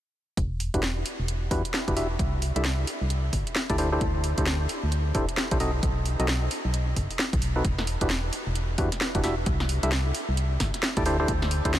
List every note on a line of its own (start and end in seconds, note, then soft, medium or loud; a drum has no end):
0.37 0.70 E1 medium
0.37 kick loud
0.37 closed hi-hat medium
0.60 open hi-hat loud
0.74 1.03 E1 loud
0.74 0.81 D4 medium
0.74 0.81 E4 medium
0.74 0.81 F#4 medium
0.74 0.81 G4 medium
0.74 0.81 B4 medium
0.74 kick medium
0.74 closed hi-hat medium
0.83 snare loud
1.06 open hi-hat loud
1.19 1.48 E1 medium
1.28 closed hi-hat medium
1.51 1.62 E2 medium
1.51 1.62 D4 medium
1.51 1.62 E4 medium
1.51 1.62 F#4 medium
1.51 1.62 G4 medium
1.51 1.62 B4 loud
1.51 kick medium
1.51 open hi-hat loud
1.65 closed hi-hat medium
1.74 snare loud
1.88 2.17 E1 loud
1.88 1.95 D4 medium
1.88 1.95 E4 medium
1.88 1.95 F#4 medium
1.88 1.95 G4 medium
1.88 1.95 B4 medium
1.88 kick loud
1.88 closed hi-hat soft
1.96 2.07 D4 medium
1.96 2.07 E4 medium
1.96 2.07 F#4 medium
1.96 2.07 G4 medium
1.96 2.07 E5 medium
1.96 open hi-hat loud
2.19 2.52 C2 medium
2.19 kick loud
2.19 closed hi-hat medium
2.42 open hi-hat loud
2.56 2.85 C2 loud
2.56 2.63 D4 medium
2.56 2.63 E4 medium
2.56 2.63 G4 medium
2.56 2.63 A4 medium
2.56 2.63 E5 medium
2.56 closed hi-hat medium
2.65 snare loud
2.87 open hi-hat loud
3.01 3.30 C2 medium
3.10 closed hi-hat medium
3.33 3.44 G1 medium
3.33 kick medium
3.33 open hi-hat loud
3.47 closed hi-hat medium
3.56 snare loud
3.70 3.99 D2 loud
3.70 3.76 D4 medium
3.70 3.76 E4 medium
3.70 3.76 G4 medium
3.70 3.76 A4 medium
3.70 3.76 D5 loud
3.70 kick loud
3.70 closed hi-hat soft
3.78 3.89 D4 medium
3.78 3.89 E4 medium
3.78 3.89 G4 medium
3.78 3.89 A4 medium
3.78 3.89 C5 loud
3.78 open hi-hat loud
3.92 4.05 D4 medium
3.92 4.05 E4 medium
3.92 4.05 G4 medium
3.92 4.05 A4 medium
3.92 4.05 C5 loud
4.01 4.34 D2 medium
4.01 kick loud
4.01 closed hi-hat medium
4.24 open hi-hat loud
4.38 4.67 D2 loud
4.38 4.45 D4 medium
4.38 4.45 E4 medium
4.38 4.45 G4 medium
4.38 4.45 A4 medium
4.38 4.45 C5 medium
4.38 kick medium
4.38 closed hi-hat medium
4.46 snare loud
4.69 open hi-hat medium
4.83 5.12 D2 medium
4.92 closed hi-hat medium
5.15 5.26 D1 medium
5.15 5.26 D4 medium
5.15 5.26 E4 medium
5.15 5.26 G4 medium
5.15 5.26 A4 medium
5.15 5.26 C5 loud
5.15 kick loud
5.15 open hi-hat loud
5.29 closed hi-hat medium
5.37 snare loud
5.51 5.80 B1 loud
5.51 5.58 D4 medium
5.51 5.58 E4 medium
5.51 5.58 G4 medium
5.51 5.58 A4 medium
5.51 5.58 C5 medium
5.51 kick loud
5.51 closed hi-hat soft
5.60 5.71 C4 medium
5.60 5.71 D#4 medium
5.60 5.71 F#4 medium
5.60 5.71 A4 medium
5.60 5.71 D#5 medium
5.60 open hi-hat loud
5.83 6.15 B1 medium
5.83 kick loud
5.83 closed hi-hat medium
6.06 open hi-hat medium
6.19 6.48 B1 loud
6.19 6.26 C4 medium
6.19 6.26 D#4 medium
6.19 6.26 F#4 medium
6.19 6.26 A4 medium
6.19 6.26 D#5 medium
6.19 closed hi-hat medium
6.28 snare loud
6.51 open hi-hat medium
6.65 6.94 B1 medium
6.74 closed hi-hat medium
6.96 7.08 F#1 medium
6.96 kick medium
6.96 open hi-hat loud
7.11 open hi-hat medium
7.19 snare loud
7.33 7.62 B1 loud
7.33 kick loud
7.33 closed hi-hat soft
7.42 open hi-hat medium
7.56 7.64 C4 medium
7.56 7.64 D#4 medium
7.56 7.64 F#4 medium
7.56 7.64 A4 medium
7.56 7.64 B4 medium
7.65 7.97 E1 loud
7.65 kick loud
7.65 closed hi-hat medium
7.78 snare medium
7.87 open hi-hat medium
8.01 8.30 E1 loud
8.01 8.08 D4 medium
8.01 8.08 E4 medium
8.01 8.08 F#4 medium
8.01 8.08 G4 medium
8.01 8.08 B4 loud
8.01 kick medium
8.01 closed hi-hat medium
8.10 snare loud
8.33 open hi-hat loud
8.47 8.76 E1 medium
8.55 closed hi-hat medium
8.78 8.90 E2 medium
8.78 8.89 D4 loud
8.78 8.89 E4 medium
8.78 8.89 F#4 medium
8.78 8.89 G4 medium
8.78 8.89 B4 loud
8.78 kick loud
8.78 open hi-hat loud
8.92 snare soft
8.92 closed hi-hat medium
9.01 snare loud
9.15 9.44 E1 loud
9.15 9.22 D4 medium
9.15 9.22 E4 medium
9.15 9.22 F#4 medium
9.15 9.22 G4 medium
9.15 9.22 B4 medium
9.15 kick loud
9.15 closed hi-hat medium
9.24 9.35 D4 medium
9.24 9.35 E4 medium
9.24 9.35 F#4 medium
9.24 9.35 G4 medium
9.24 9.35 E5 medium
9.24 snare medium
9.24 open hi-hat loud
9.46 9.79 C2 loud
9.46 kick loud
9.46 closed hi-hat medium
9.60 snare medium
9.69 open hi-hat loud
9.83 10.12 C2 loud
9.83 9.90 D4 medium
9.83 9.90 E4 medium
9.83 9.90 G4 medium
9.83 9.90 A4 medium
9.83 9.90 E5 medium
9.83 closed hi-hat medium
9.92 snare loud
10.15 open hi-hat loud
10.29 10.58 C2 medium
10.37 closed hi-hat medium
10.60 10.72 G1 medium
10.60 kick medium
10.60 snare medium
10.60 open hi-hat loud
10.74 snare soft
10.74 closed hi-hat medium
10.83 snare loud
10.97 11.26 D2 loud
10.97 11.04 D4 medium
10.97 11.04 E4 medium
10.97 11.04 G4 medium
10.97 11.04 A4 medium
10.97 11.04 D5 loud
10.97 kick loud
10.97 closed hi-hat medium
11.06 11.17 D4 loud
11.06 11.17 E4 medium
11.06 11.17 G4 medium
11.06 11.17 A4 medium
11.06 11.17 C5 loud
11.06 open hi-hat loud
11.20 11.32 D4 medium
11.20 11.32 E4 medium
11.20 11.32 G4 medium
11.20 11.32 A4 medium
11.20 11.32 C5 loud
11.28 11.61 D2 loud
11.28 kick loud
11.28 closed hi-hat medium
11.42 snare medium
11.51 open hi-hat loud
11.65 11.79 D2 loud
11.65 11.72 D4 medium
11.65 11.72 E4 medium
11.65 11.72 G4 medium
11.65 11.72 A4 medium
11.65 11.72 C5 loud
11.65 kick medium
11.65 closed hi-hat medium
11.74 snare loud